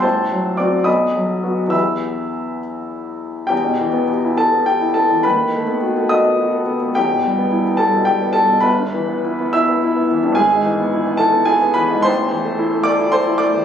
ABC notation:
X:1
M:6/8
L:1/16
Q:3/8=70
K:Em
V:1 name="Upright piano"
[cac']4 [dd']2 [^db^d']6 | [ebe']6 z6 | [Gg]6 [Aa]2 [Gg]2 [Aa]2 | [Bb]6 [^d^d']6 |
[Gg]6 [Aa]2 [Gg]2 [Aa]2 | [Bb]6 [ee']6 | [K:Am] [^G^g]6 [Aa]2 [Gg]2 [Bb]2 | [cc']6 [dd']2 [cc']2 [dd']2 |]
V:2 name="Upright piano"
A,,,2 F,2 [CF]2 B,,,2 F,2 [B,F]2 | [E,,E,B,G]12 | E,, B,, E, B, G E G B,2 E B, E, | ^D,, ^D, A, B, F A F B, F A B, A, |
E,, B,, G, B, E B, G, B,, G, B, G, B,, | G,,, G,, E, B, E B, E B, E B, E, G,, | [K:Am] ^G,,, ^G,, E, B, E B, E B, E B, E, G,, | A,,, E,, E, A, E A, A E A E A, E, |]